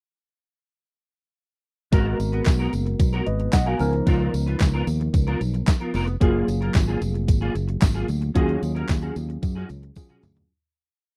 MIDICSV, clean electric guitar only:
0, 0, Header, 1, 3, 480
1, 0, Start_track
1, 0, Tempo, 535714
1, 1726, Time_signature, 4, 2, 24, 8
1, 10001, End_track
2, 0, Start_track
2, 0, Title_t, "Clean electric guitar"
2, 0, Program_c, 0, 27
2, 1721, Note_on_c, 0, 59, 89
2, 1728, Note_on_c, 0, 66, 93
2, 1734, Note_on_c, 0, 70, 100
2, 1944, Note_off_c, 0, 59, 0
2, 1948, Note_off_c, 0, 66, 0
2, 1951, Note_off_c, 0, 70, 0
2, 2081, Note_on_c, 0, 71, 51
2, 2089, Note_on_c, 0, 66, 53
2, 2095, Note_on_c, 0, 59, 45
2, 2192, Note_off_c, 0, 59, 0
2, 2198, Note_off_c, 0, 66, 0
2, 2209, Note_off_c, 0, 71, 0
2, 2321, Note_on_c, 0, 70, 80
2, 2329, Note_on_c, 0, 66, 69
2, 2335, Note_on_c, 0, 59, 74
2, 2432, Note_off_c, 0, 59, 0
2, 2437, Note_off_c, 0, 66, 0
2, 2442, Note_off_c, 0, 70, 0
2, 2803, Note_on_c, 0, 70, 76
2, 2810, Note_on_c, 0, 66, 71
2, 2817, Note_on_c, 0, 59, 60
2, 2914, Note_off_c, 0, 59, 0
2, 2919, Note_off_c, 0, 66, 0
2, 2923, Note_off_c, 0, 70, 0
2, 3282, Note_on_c, 0, 70, 78
2, 3290, Note_on_c, 0, 66, 73
2, 3296, Note_on_c, 0, 59, 60
2, 3394, Note_off_c, 0, 59, 0
2, 3404, Note_off_c, 0, 70, 0
2, 3407, Note_off_c, 0, 66, 0
2, 3640, Note_on_c, 0, 59, 76
2, 3649, Note_on_c, 0, 65, 94
2, 3656, Note_on_c, 0, 70, 92
2, 3864, Note_off_c, 0, 59, 0
2, 3868, Note_off_c, 0, 65, 0
2, 3872, Note_off_c, 0, 70, 0
2, 4002, Note_on_c, 0, 71, 61
2, 4011, Note_on_c, 0, 65, 56
2, 4017, Note_on_c, 0, 59, 49
2, 4112, Note_off_c, 0, 59, 0
2, 4118, Note_off_c, 0, 65, 0
2, 4129, Note_off_c, 0, 71, 0
2, 4243, Note_on_c, 0, 70, 85
2, 4250, Note_on_c, 0, 65, 78
2, 4257, Note_on_c, 0, 59, 73
2, 4351, Note_off_c, 0, 59, 0
2, 4356, Note_off_c, 0, 65, 0
2, 4361, Note_off_c, 0, 70, 0
2, 4721, Note_on_c, 0, 70, 84
2, 4728, Note_on_c, 0, 65, 78
2, 4735, Note_on_c, 0, 59, 67
2, 4832, Note_off_c, 0, 59, 0
2, 4837, Note_off_c, 0, 65, 0
2, 4842, Note_off_c, 0, 70, 0
2, 5198, Note_on_c, 0, 70, 63
2, 5206, Note_on_c, 0, 65, 56
2, 5212, Note_on_c, 0, 59, 50
2, 5309, Note_off_c, 0, 59, 0
2, 5317, Note_off_c, 0, 65, 0
2, 5320, Note_on_c, 0, 59, 88
2, 5324, Note_off_c, 0, 70, 0
2, 5328, Note_on_c, 0, 65, 81
2, 5334, Note_on_c, 0, 70, 98
2, 5430, Note_off_c, 0, 70, 0
2, 5440, Note_off_c, 0, 65, 0
2, 5505, Note_off_c, 0, 59, 0
2, 5561, Note_on_c, 0, 58, 87
2, 5569, Note_on_c, 0, 65, 92
2, 5575, Note_on_c, 0, 68, 94
2, 5784, Note_off_c, 0, 58, 0
2, 5788, Note_off_c, 0, 65, 0
2, 5791, Note_off_c, 0, 68, 0
2, 5920, Note_on_c, 0, 70, 55
2, 5929, Note_on_c, 0, 65, 51
2, 5934, Note_on_c, 0, 58, 46
2, 6030, Note_off_c, 0, 58, 0
2, 6036, Note_off_c, 0, 65, 0
2, 6047, Note_off_c, 0, 70, 0
2, 6160, Note_on_c, 0, 68, 85
2, 6169, Note_on_c, 0, 65, 85
2, 6175, Note_on_c, 0, 58, 71
2, 6270, Note_off_c, 0, 58, 0
2, 6275, Note_off_c, 0, 65, 0
2, 6280, Note_off_c, 0, 68, 0
2, 6640, Note_on_c, 0, 68, 83
2, 6647, Note_on_c, 0, 65, 76
2, 6655, Note_on_c, 0, 58, 63
2, 6750, Note_off_c, 0, 58, 0
2, 6755, Note_off_c, 0, 65, 0
2, 6760, Note_off_c, 0, 68, 0
2, 7118, Note_on_c, 0, 68, 72
2, 7125, Note_on_c, 0, 65, 67
2, 7132, Note_on_c, 0, 58, 62
2, 7229, Note_off_c, 0, 58, 0
2, 7235, Note_off_c, 0, 65, 0
2, 7239, Note_off_c, 0, 68, 0
2, 7478, Note_on_c, 0, 61, 78
2, 7486, Note_on_c, 0, 66, 88
2, 7493, Note_on_c, 0, 68, 92
2, 7703, Note_off_c, 0, 61, 0
2, 7707, Note_off_c, 0, 66, 0
2, 7710, Note_off_c, 0, 68, 0
2, 7839, Note_on_c, 0, 70, 59
2, 7847, Note_on_c, 0, 66, 51
2, 7853, Note_on_c, 0, 61, 51
2, 7951, Note_off_c, 0, 61, 0
2, 7956, Note_off_c, 0, 66, 0
2, 7968, Note_off_c, 0, 70, 0
2, 8080, Note_on_c, 0, 68, 81
2, 8088, Note_on_c, 0, 66, 67
2, 8094, Note_on_c, 0, 61, 65
2, 8192, Note_off_c, 0, 61, 0
2, 8199, Note_off_c, 0, 66, 0
2, 8202, Note_off_c, 0, 68, 0
2, 8560, Note_on_c, 0, 68, 76
2, 8569, Note_on_c, 0, 66, 80
2, 8575, Note_on_c, 0, 61, 70
2, 8672, Note_off_c, 0, 61, 0
2, 8677, Note_off_c, 0, 66, 0
2, 8681, Note_off_c, 0, 68, 0
2, 9042, Note_on_c, 0, 68, 75
2, 9050, Note_on_c, 0, 66, 72
2, 9057, Note_on_c, 0, 61, 66
2, 9152, Note_off_c, 0, 61, 0
2, 9157, Note_off_c, 0, 66, 0
2, 9161, Note_off_c, 0, 68, 0
2, 10001, End_track
3, 0, Start_track
3, 0, Title_t, "Muted clean electric guitar strokes"
3, 1961, Note_on_c, 9, 29, 45
3, 2050, Note_off_c, 9, 29, 0
3, 2203, Note_on_c, 9, 29, 43
3, 2293, Note_off_c, 9, 29, 0
3, 2443, Note_on_c, 9, 29, 41
3, 2533, Note_off_c, 9, 29, 0
3, 2561, Note_on_c, 9, 29, 40
3, 2651, Note_off_c, 9, 29, 0
3, 2683, Note_on_c, 9, 29, 43
3, 2773, Note_off_c, 9, 29, 0
3, 2924, Note_on_c, 9, 29, 39
3, 3014, Note_off_c, 9, 29, 0
3, 3043, Note_on_c, 9, 29, 52
3, 3133, Note_off_c, 9, 29, 0
3, 3163, Note_on_c, 9, 29, 49
3, 3252, Note_off_c, 9, 29, 0
3, 3405, Note_on_c, 9, 29, 39
3, 3495, Note_off_c, 9, 29, 0
3, 3523, Note_on_c, 9, 29, 47
3, 3612, Note_off_c, 9, 29, 0
3, 3884, Note_on_c, 9, 29, 36
3, 3974, Note_off_c, 9, 29, 0
3, 4123, Note_on_c, 9, 29, 35
3, 4212, Note_off_c, 9, 29, 0
3, 4361, Note_on_c, 9, 29, 37
3, 4451, Note_off_c, 9, 29, 0
3, 4481, Note_on_c, 9, 29, 44
3, 4571, Note_off_c, 9, 29, 0
3, 4600, Note_on_c, 9, 29, 50
3, 4690, Note_off_c, 9, 29, 0
3, 4843, Note_on_c, 9, 29, 45
3, 4932, Note_off_c, 9, 29, 0
3, 4962, Note_on_c, 9, 29, 43
3, 5052, Note_off_c, 9, 29, 0
3, 5080, Note_on_c, 9, 29, 38
3, 5169, Note_off_c, 9, 29, 0
3, 5441, Note_on_c, 9, 29, 41
3, 5531, Note_off_c, 9, 29, 0
3, 5801, Note_on_c, 9, 29, 36
3, 5890, Note_off_c, 9, 29, 0
3, 6041, Note_on_c, 9, 29, 45
3, 6131, Note_off_c, 9, 29, 0
3, 6281, Note_on_c, 9, 29, 46
3, 6370, Note_off_c, 9, 29, 0
3, 6402, Note_on_c, 9, 29, 39
3, 6491, Note_off_c, 9, 29, 0
3, 6521, Note_on_c, 9, 29, 38
3, 6610, Note_off_c, 9, 29, 0
3, 6761, Note_on_c, 9, 29, 42
3, 6850, Note_off_c, 9, 29, 0
3, 6879, Note_on_c, 9, 29, 52
3, 6968, Note_off_c, 9, 29, 0
3, 7000, Note_on_c, 9, 29, 41
3, 7089, Note_off_c, 9, 29, 0
3, 7240, Note_on_c, 9, 29, 34
3, 7330, Note_off_c, 9, 29, 0
3, 7359, Note_on_c, 9, 29, 44
3, 7449, Note_off_c, 9, 29, 0
3, 7719, Note_on_c, 9, 29, 43
3, 7808, Note_off_c, 9, 29, 0
3, 7961, Note_on_c, 9, 29, 40
3, 8051, Note_off_c, 9, 29, 0
3, 8203, Note_on_c, 9, 29, 34
3, 8292, Note_off_c, 9, 29, 0
3, 8322, Note_on_c, 9, 29, 44
3, 8411, Note_off_c, 9, 29, 0
3, 8441, Note_on_c, 9, 29, 38
3, 8531, Note_off_c, 9, 29, 0
3, 8682, Note_on_c, 9, 29, 40
3, 8772, Note_off_c, 9, 29, 0
3, 8802, Note_on_c, 9, 29, 46
3, 8891, Note_off_c, 9, 29, 0
3, 8922, Note_on_c, 9, 29, 34
3, 9012, Note_off_c, 9, 29, 0
3, 9162, Note_on_c, 9, 29, 43
3, 9252, Note_off_c, 9, 29, 0
3, 9282, Note_on_c, 9, 29, 46
3, 9372, Note_off_c, 9, 29, 0
3, 10001, End_track
0, 0, End_of_file